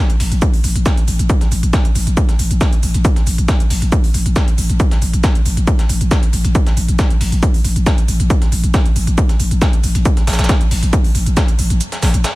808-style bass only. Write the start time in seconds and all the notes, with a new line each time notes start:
0.20 A1
0.32 A1
0.64 A1
0.75 A1
1.08 A1
1.19 A1
1.51 A1
1.63 A1
1.95 A1
2.07 A1
2.39 A1
2.51 A1
2.83 A1
2.95 A1
3.27 A1
3.38 A1
3.71 A1
3.82 A1
4.14 A1
4.26 A1
4.58 A1
4.69 A1
5.02 A1
5.13 A1
5.46 A1
5.57 A1
5.89 A1
6.01 A1
6.33 A1
6.44 A1
6.77 A1
6.88 A1
7.21 A1
7.32 A1
7.64 A1
7.76 A1
8.08 A1
8.20 A1
8.52 A1
8.63 A1
8.96 A1
9.07 A1
9.40 A1
9.51 A1
9.84 A1
9.95 A1
10.27 A1
10.39 A1
10.71 A1
10.83 A1
11.15 A1
11.27 A1
11.59 A1
11.70 A1
12.03 A1
12.14 A1